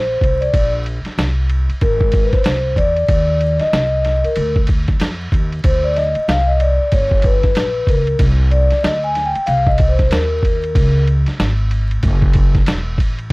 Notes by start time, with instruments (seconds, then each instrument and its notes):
Already playing: upright bass A#1, vibraphone C5
0.21 upright bass C2, kick, ride
0.41 vibraphone D5, ride
0.54 upright bass A#1, kick, ride
0.86 ride
1.05 muted upright bass stroke, snare, ride
1.18 upright bass C2, snare, hi-hat pedal, ride
1.49 ride
1.69 muted upright bass stroke, ride
1.81 upright bass G#1, vibraphone A#4, kick, ride
2.01 kick
2.12 kick, ride
2.23 vibraphone B4
2.32 vibraphone C5, muted upright bass stroke, kick, snare, ride
2.44 upright bass C2, snare, hi-hat pedal, ride
2.76 upright bass E2, vibraphone D5, kick, ride
2.97 ride
3.08 upright bass D#2, kick, ride
3.41 ride
3.59 vibraphone D#5, muted upright bass stroke, snare, ride
3.73 upright bass C2, snare, hi-hat pedal, ride
4.05 snare, ride
4.24 vibraphone A#4, muted upright bass stroke, ride
4.36 upright bass D2, ride
4.56 kick
4.67 kick, ride
4.88 kick, snare, ride
5.00 upright bass F2, snare, hi-hat pedal, ride
5.32 upright bass D#2, kick, ride
5.52 ride
5.64 upright bass D2, vibraphone C5, kick, ride
5.84 vibraphone D5
5.96 vibraphone D#5, snare, ride
6.15 muted upright bass stroke, ride
6.28 upright bass C2, vibraphone F5, snare, hi-hat pedal, ride
6.47 vibraphone D#5
6.60 vibraphone D5, ride
6.79 muted upright bass stroke
6.92 upright bass G1, vibraphone C#5, kick, ride
7.11 kick
7.22 vibraphone B4, kick, ride
7.43 kick, snare, ride
7.55 upright bass A#1, snare, hi-hat pedal, ride
7.87 upright bass C#2, vibraphone A#4, kick, ride
8.07 ride
8.19 upright bass C2, kick, ride
8.51 vibraphone D5, ride
8.70 muted upright bass stroke, snare, ride
8.83 upright bass D2, vibraphone D#5, snare, hi-hat pedal, ride
9.04 vibraphone G#5
9.15 snare, ride
9.25 vibraphone G5
9.35 muted upright bass stroke, ride
9.46 upright bass C2, vibraphone F5, ride
9.67 vibraphone D#5, kick
9.78 kick, ride
9.88 vibraphone C5
9.99 kick, snare, ride
10.10 upright bass D#2, vibraphone A#4, snare, hi-hat pedal, ride
10.43 kick, ride
10.64 ride
10.75 upright bass C#2, kick, ride
11.07 ride
11.26 muted upright bass stroke, snare, ride
11.39 upright bass G#1, snare, hi-hat pedal, ride
11.71 ride
11.91 ride
12.03 upright bass F#1, kick, ride
12.22 kick
12.33 kick, ride
12.55 kick, snare, ride
12.66 upright bass E1, snare, hi-hat pedal, ride
12.98 upright bass A1, kick, ride
13.19 ride